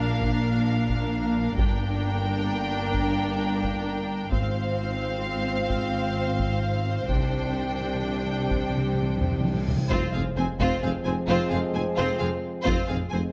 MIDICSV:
0, 0, Header, 1, 13, 480
1, 0, Start_track
1, 0, Tempo, 457317
1, 1655, Time_signature, 12, 3, 24, 8
1, 5984, Tempo, 468019
1, 10304, Tempo, 459418
1, 13864, End_track
2, 0, Start_track
2, 0, Title_t, "Violin section"
2, 0, Program_c, 0, 48
2, 0, Note_on_c, 0, 77, 50
2, 1614, Note_off_c, 0, 77, 0
2, 1646, Note_on_c, 0, 79, 52
2, 4489, Note_off_c, 0, 79, 0
2, 4530, Note_on_c, 0, 77, 51
2, 7375, Note_off_c, 0, 77, 0
2, 7413, Note_on_c, 0, 79, 42
2, 10052, Note_off_c, 0, 79, 0
2, 10283, Note_on_c, 0, 72, 56
2, 10516, Note_off_c, 0, 72, 0
2, 10528, Note_on_c, 0, 77, 37
2, 10612, Note_off_c, 0, 77, 0
2, 10785, Note_on_c, 0, 80, 44
2, 10869, Note_off_c, 0, 80, 0
2, 11017, Note_on_c, 0, 72, 56
2, 11242, Note_off_c, 0, 72, 0
2, 11260, Note_on_c, 0, 77, 42
2, 11343, Note_off_c, 0, 77, 0
2, 11485, Note_on_c, 0, 80, 45
2, 11568, Note_off_c, 0, 80, 0
2, 11739, Note_on_c, 0, 72, 59
2, 11965, Note_off_c, 0, 72, 0
2, 11969, Note_on_c, 0, 77, 45
2, 12052, Note_off_c, 0, 77, 0
2, 12209, Note_on_c, 0, 80, 48
2, 12292, Note_off_c, 0, 80, 0
2, 12455, Note_on_c, 0, 72, 61
2, 12683, Note_off_c, 0, 72, 0
2, 12683, Note_on_c, 0, 77, 48
2, 12767, Note_off_c, 0, 77, 0
2, 13150, Note_on_c, 0, 72, 66
2, 13389, Note_off_c, 0, 72, 0
2, 13401, Note_on_c, 0, 77, 41
2, 13484, Note_off_c, 0, 77, 0
2, 13638, Note_on_c, 0, 80, 51
2, 13722, Note_off_c, 0, 80, 0
2, 13864, End_track
3, 0, Start_track
3, 0, Title_t, "Violin section"
3, 0, Program_c, 1, 48
3, 0, Note_on_c, 1, 70, 53
3, 1606, Note_off_c, 1, 70, 0
3, 1650, Note_on_c, 1, 70, 54
3, 4490, Note_off_c, 1, 70, 0
3, 4530, Note_on_c, 1, 72, 49
3, 10052, Note_off_c, 1, 72, 0
3, 10297, Note_on_c, 1, 65, 57
3, 10524, Note_off_c, 1, 65, 0
3, 10543, Note_on_c, 1, 68, 42
3, 10626, Note_off_c, 1, 68, 0
3, 10775, Note_on_c, 1, 72, 44
3, 10858, Note_off_c, 1, 72, 0
3, 11024, Note_on_c, 1, 65, 64
3, 11246, Note_off_c, 1, 65, 0
3, 11254, Note_on_c, 1, 68, 43
3, 11338, Note_off_c, 1, 68, 0
3, 11490, Note_on_c, 1, 72, 43
3, 11574, Note_off_c, 1, 72, 0
3, 11728, Note_on_c, 1, 65, 62
3, 11946, Note_on_c, 1, 68, 47
3, 11959, Note_off_c, 1, 65, 0
3, 12029, Note_off_c, 1, 68, 0
3, 12206, Note_on_c, 1, 72, 43
3, 12289, Note_off_c, 1, 72, 0
3, 12438, Note_on_c, 1, 65, 55
3, 12674, Note_off_c, 1, 65, 0
3, 12677, Note_on_c, 1, 68, 45
3, 12760, Note_off_c, 1, 68, 0
3, 13151, Note_on_c, 1, 65, 58
3, 13390, Note_off_c, 1, 65, 0
3, 13409, Note_on_c, 1, 68, 40
3, 13493, Note_off_c, 1, 68, 0
3, 13675, Note_on_c, 1, 72, 47
3, 13758, Note_off_c, 1, 72, 0
3, 13864, End_track
4, 0, Start_track
4, 0, Title_t, "French horn section"
4, 0, Program_c, 2, 60
4, 0, Note_on_c, 2, 58, 55
4, 0, Note_on_c, 2, 62, 57
4, 1612, Note_off_c, 2, 58, 0
4, 1612, Note_off_c, 2, 62, 0
4, 1641, Note_on_c, 2, 62, 56
4, 1642, Note_on_c, 2, 58, 54
4, 4355, Note_off_c, 2, 58, 0
4, 4355, Note_off_c, 2, 62, 0
4, 4533, Note_on_c, 2, 60, 55
4, 4536, Note_on_c, 2, 65, 52
4, 7377, Note_off_c, 2, 60, 0
4, 7378, Note_off_c, 2, 65, 0
4, 7410, Note_on_c, 2, 67, 48
4, 7421, Note_on_c, 2, 62, 45
4, 10019, Note_off_c, 2, 67, 0
4, 10024, Note_off_c, 2, 62, 0
4, 10303, Note_on_c, 2, 56, 55
4, 10305, Note_on_c, 2, 60, 61
4, 13143, Note_off_c, 2, 56, 0
4, 13144, Note_off_c, 2, 60, 0
4, 13192, Note_on_c, 2, 60, 62
4, 13193, Note_on_c, 2, 56, 61
4, 13864, Note_off_c, 2, 56, 0
4, 13864, Note_off_c, 2, 60, 0
4, 13864, End_track
5, 0, Start_track
5, 0, Title_t, "Viola section"
5, 0, Program_c, 3, 48
5, 0, Note_on_c, 3, 62, 54
5, 1615, Note_off_c, 3, 62, 0
5, 1662, Note_on_c, 3, 62, 57
5, 4496, Note_off_c, 3, 62, 0
5, 4526, Note_on_c, 3, 60, 52
5, 7373, Note_off_c, 3, 60, 0
5, 7420, Note_on_c, 3, 62, 46
5, 10055, Note_off_c, 3, 62, 0
5, 10300, Note_on_c, 3, 60, 57
5, 10525, Note_off_c, 3, 60, 0
5, 10536, Note_on_c, 3, 60, 41
5, 10619, Note_off_c, 3, 60, 0
5, 10786, Note_on_c, 3, 60, 39
5, 10869, Note_off_c, 3, 60, 0
5, 11028, Note_on_c, 3, 60, 57
5, 11248, Note_off_c, 3, 60, 0
5, 11264, Note_on_c, 3, 60, 46
5, 11347, Note_off_c, 3, 60, 0
5, 11500, Note_on_c, 3, 60, 43
5, 11583, Note_off_c, 3, 60, 0
5, 11738, Note_on_c, 3, 60, 57
5, 11964, Note_off_c, 3, 60, 0
5, 11984, Note_on_c, 3, 60, 46
5, 12067, Note_off_c, 3, 60, 0
5, 12221, Note_on_c, 3, 60, 42
5, 12304, Note_off_c, 3, 60, 0
5, 12460, Note_on_c, 3, 60, 63
5, 12685, Note_off_c, 3, 60, 0
5, 12698, Note_on_c, 3, 60, 45
5, 12781, Note_off_c, 3, 60, 0
5, 13176, Note_on_c, 3, 60, 55
5, 13403, Note_off_c, 3, 60, 0
5, 13423, Note_on_c, 3, 60, 41
5, 13507, Note_off_c, 3, 60, 0
5, 13653, Note_on_c, 3, 60, 38
5, 13737, Note_off_c, 3, 60, 0
5, 13864, End_track
6, 0, Start_track
6, 0, Title_t, "Timpani"
6, 0, Program_c, 4, 47
6, 7485, Note_on_c, 4, 48, 25
6, 7554, Note_off_c, 4, 48, 0
6, 7636, Note_on_c, 4, 48, 25
6, 7705, Note_off_c, 4, 48, 0
6, 7717, Note_on_c, 4, 48, 27
6, 7787, Note_off_c, 4, 48, 0
6, 7799, Note_on_c, 4, 48, 27
6, 7877, Note_off_c, 4, 48, 0
6, 7966, Note_on_c, 4, 48, 29
6, 8033, Note_off_c, 4, 48, 0
6, 8045, Note_on_c, 4, 48, 29
6, 8121, Note_off_c, 4, 48, 0
6, 8132, Note_on_c, 4, 48, 29
6, 8197, Note_off_c, 4, 48, 0
6, 8282, Note_on_c, 4, 48, 33
6, 8351, Note_off_c, 4, 48, 0
6, 8436, Note_on_c, 4, 48, 33
6, 8510, Note_off_c, 4, 48, 0
6, 8522, Note_on_c, 4, 48, 35
6, 8584, Note_off_c, 4, 48, 0
6, 8597, Note_on_c, 4, 48, 34
6, 8657, Note_off_c, 4, 48, 0
6, 8669, Note_on_c, 4, 48, 39
6, 8737, Note_off_c, 4, 48, 0
6, 8749, Note_on_c, 4, 48, 41
6, 8810, Note_off_c, 4, 48, 0
6, 8894, Note_on_c, 4, 48, 39
6, 8967, Note_off_c, 4, 48, 0
6, 8980, Note_on_c, 4, 48, 44
6, 9044, Note_off_c, 4, 48, 0
6, 9056, Note_on_c, 4, 48, 44
6, 9122, Note_off_c, 4, 48, 0
6, 9135, Note_on_c, 4, 48, 46
6, 9205, Note_off_c, 4, 48, 0
6, 9218, Note_on_c, 4, 48, 47
6, 9285, Note_off_c, 4, 48, 0
6, 9297, Note_on_c, 4, 48, 48
6, 9371, Note_off_c, 4, 48, 0
6, 9383, Note_on_c, 4, 48, 46
6, 9440, Note_off_c, 4, 48, 0
6, 9452, Note_on_c, 4, 48, 51
6, 9525, Note_off_c, 4, 48, 0
6, 9537, Note_on_c, 4, 48, 52
6, 9599, Note_off_c, 4, 48, 0
6, 9612, Note_on_c, 4, 48, 56
6, 9678, Note_off_c, 4, 48, 0
6, 9691, Note_on_c, 4, 48, 56
6, 9755, Note_off_c, 4, 48, 0
6, 9767, Note_on_c, 4, 48, 58
6, 9839, Note_off_c, 4, 48, 0
6, 9851, Note_on_c, 4, 48, 60
6, 9913, Note_off_c, 4, 48, 0
6, 9925, Note_on_c, 4, 48, 64
6, 9986, Note_off_c, 4, 48, 0
6, 9998, Note_on_c, 4, 48, 66
6, 10065, Note_off_c, 4, 48, 0
6, 10077, Note_on_c, 4, 48, 71
6, 10141, Note_off_c, 4, 48, 0
6, 10153, Note_on_c, 4, 48, 71
6, 10231, Note_off_c, 4, 48, 0
6, 10287, Note_on_c, 4, 41, 66
6, 10973, Note_off_c, 4, 41, 0
6, 13864, End_track
7, 0, Start_track
7, 0, Title_t, "Trombone section"
7, 0, Program_c, 5, 61
7, 10284, Note_on_c, 5, 53, 64
7, 10293, Note_on_c, 5, 41, 61
7, 13133, Note_off_c, 5, 53, 0
7, 13138, Note_off_c, 5, 41, 0
7, 13177, Note_on_c, 5, 41, 62
7, 13181, Note_on_c, 5, 53, 66
7, 13864, Note_off_c, 5, 41, 0
7, 13864, Note_off_c, 5, 53, 0
7, 13864, End_track
8, 0, Start_track
8, 0, Title_t, "Cello section"
8, 0, Program_c, 6, 48
8, 0, Note_on_c, 6, 46, 58
8, 1615, Note_off_c, 6, 46, 0
8, 1654, Note_on_c, 6, 43, 54
8, 4535, Note_off_c, 6, 43, 0
8, 4539, Note_on_c, 6, 44, 48
8, 7380, Note_off_c, 6, 44, 0
8, 7426, Note_on_c, 6, 48, 41
8, 10058, Note_off_c, 6, 48, 0
8, 10312, Note_on_c, 6, 41, 59
8, 10396, Note_off_c, 6, 41, 0
8, 10546, Note_on_c, 6, 41, 42
8, 10630, Note_off_c, 6, 41, 0
8, 10789, Note_on_c, 6, 41, 42
8, 10873, Note_off_c, 6, 41, 0
8, 11028, Note_on_c, 6, 41, 62
8, 11112, Note_off_c, 6, 41, 0
8, 11261, Note_on_c, 6, 41, 46
8, 11345, Note_off_c, 6, 41, 0
8, 11507, Note_on_c, 6, 41, 40
8, 11590, Note_off_c, 6, 41, 0
8, 11745, Note_on_c, 6, 41, 66
8, 11829, Note_off_c, 6, 41, 0
8, 11984, Note_on_c, 6, 41, 42
8, 12068, Note_off_c, 6, 41, 0
8, 12230, Note_on_c, 6, 41, 45
8, 12313, Note_off_c, 6, 41, 0
8, 12460, Note_on_c, 6, 41, 61
8, 12544, Note_off_c, 6, 41, 0
8, 12701, Note_on_c, 6, 41, 47
8, 12785, Note_off_c, 6, 41, 0
8, 13168, Note_on_c, 6, 41, 64
8, 13251, Note_off_c, 6, 41, 0
8, 13411, Note_on_c, 6, 41, 42
8, 13495, Note_off_c, 6, 41, 0
8, 13657, Note_on_c, 6, 41, 44
8, 13741, Note_off_c, 6, 41, 0
8, 13864, End_track
9, 0, Start_track
9, 0, Title_t, "Double bass section"
9, 0, Program_c, 7, 48
9, 0, Note_on_c, 7, 34, 54
9, 1613, Note_off_c, 7, 34, 0
9, 1659, Note_on_c, 7, 31, 53
9, 4537, Note_off_c, 7, 31, 0
9, 4538, Note_on_c, 7, 32, 47
9, 7379, Note_off_c, 7, 32, 0
9, 7412, Note_on_c, 7, 36, 44
9, 10051, Note_off_c, 7, 36, 0
9, 10301, Note_on_c, 7, 29, 60
9, 10385, Note_off_c, 7, 29, 0
9, 10540, Note_on_c, 7, 29, 40
9, 10623, Note_off_c, 7, 29, 0
9, 10776, Note_on_c, 7, 29, 45
9, 10859, Note_off_c, 7, 29, 0
9, 11011, Note_on_c, 7, 29, 61
9, 11095, Note_off_c, 7, 29, 0
9, 11262, Note_on_c, 7, 29, 41
9, 11345, Note_off_c, 7, 29, 0
9, 11494, Note_on_c, 7, 29, 42
9, 11577, Note_off_c, 7, 29, 0
9, 11737, Note_on_c, 7, 29, 63
9, 11820, Note_off_c, 7, 29, 0
9, 11975, Note_on_c, 7, 29, 43
9, 12059, Note_off_c, 7, 29, 0
9, 12211, Note_on_c, 7, 29, 46
9, 12294, Note_off_c, 7, 29, 0
9, 12459, Note_on_c, 7, 29, 65
9, 12542, Note_off_c, 7, 29, 0
9, 12698, Note_on_c, 7, 29, 48
9, 12781, Note_off_c, 7, 29, 0
9, 13191, Note_on_c, 7, 29, 60
9, 13274, Note_off_c, 7, 29, 0
9, 13428, Note_on_c, 7, 29, 44
9, 13511, Note_off_c, 7, 29, 0
9, 13664, Note_on_c, 7, 29, 49
9, 13747, Note_off_c, 7, 29, 0
9, 13864, End_track
10, 0, Start_track
10, 0, Title_t, "Tuba"
10, 0, Program_c, 8, 58
10, 10285, Note_on_c, 8, 29, 57
10, 10385, Note_off_c, 8, 29, 0
10, 10534, Note_on_c, 8, 29, 41
10, 10632, Note_off_c, 8, 29, 0
10, 10768, Note_on_c, 8, 29, 40
10, 10867, Note_off_c, 8, 29, 0
10, 11011, Note_on_c, 8, 29, 66
10, 11109, Note_off_c, 8, 29, 0
10, 11256, Note_on_c, 8, 29, 46
10, 11353, Note_off_c, 8, 29, 0
10, 11488, Note_on_c, 8, 29, 45
10, 11587, Note_off_c, 8, 29, 0
10, 11737, Note_on_c, 8, 29, 61
10, 11834, Note_off_c, 8, 29, 0
10, 11973, Note_on_c, 8, 29, 43
10, 12071, Note_off_c, 8, 29, 0
10, 12207, Note_on_c, 8, 29, 47
10, 12306, Note_off_c, 8, 29, 0
10, 12461, Note_on_c, 8, 29, 60
10, 12558, Note_off_c, 8, 29, 0
10, 12695, Note_on_c, 8, 29, 44
10, 12793, Note_off_c, 8, 29, 0
10, 13173, Note_on_c, 8, 29, 63
10, 13271, Note_off_c, 8, 29, 0
10, 13404, Note_on_c, 8, 29, 44
10, 13504, Note_off_c, 8, 29, 0
10, 13653, Note_on_c, 8, 29, 45
10, 13751, Note_off_c, 8, 29, 0
10, 13864, End_track
11, 0, Start_track
11, 0, Title_t, "Impact"
11, 0, Program_c, 10, 103
11, 10300, Note_on_c, 10, 60, 60
11, 13183, Note_off_c, 10, 60, 0
11, 13864, End_track
12, 0, Start_track
12, 0, Title_t, "Reverse cymbal"
12, 0, Program_c, 11, 119
12, 7415, Note_on_c, 11, 60, 47
12, 10301, Note_off_c, 11, 60, 0
12, 13864, End_track
13, 0, Start_track
13, 0, Title_t, "Taiko and cinematic ensemble drums"
13, 217, Note_on_c, 9, 41, 61
13, 322, Note_off_c, 9, 41, 0
13, 939, Note_on_c, 9, 41, 68
13, 1044, Note_off_c, 9, 41, 0
13, 1655, Note_on_c, 9, 41, 82
13, 1760, Note_off_c, 9, 41, 0
13, 3089, Note_on_c, 9, 41, 60
13, 3194, Note_off_c, 9, 41, 0
13, 3812, Note_on_c, 9, 41, 65
13, 3917, Note_off_c, 9, 41, 0
13, 4532, Note_on_c, 9, 41, 75
13, 4637, Note_off_c, 9, 41, 0
13, 5978, Note_on_c, 9, 41, 63
13, 6081, Note_off_c, 9, 41, 0
13, 6691, Note_on_c, 9, 41, 62
13, 6794, Note_off_c, 9, 41, 0
13, 7417, Note_on_c, 9, 41, 73
13, 7519, Note_off_c, 9, 41, 0
13, 8861, Note_on_c, 9, 41, 60
13, 8964, Note_off_c, 9, 41, 0
13, 9581, Note_on_c, 9, 45, 65
13, 9684, Note_off_c, 9, 45, 0
13, 9825, Note_on_c, 9, 48, 70
13, 9927, Note_off_c, 9, 48, 0
13, 10064, Note_on_c, 9, 43, 72
13, 10167, Note_off_c, 9, 43, 0
13, 10305, Note_on_c, 9, 41, 81
13, 10410, Note_off_c, 9, 41, 0
13, 11020, Note_on_c, 9, 41, 67
13, 11124, Note_off_c, 9, 41, 0
13, 13184, Note_on_c, 9, 41, 81
13, 13288, Note_off_c, 9, 41, 0
13, 13431, Note_on_c, 9, 47, 46
13, 13535, Note_off_c, 9, 47, 0
13, 13864, End_track
0, 0, End_of_file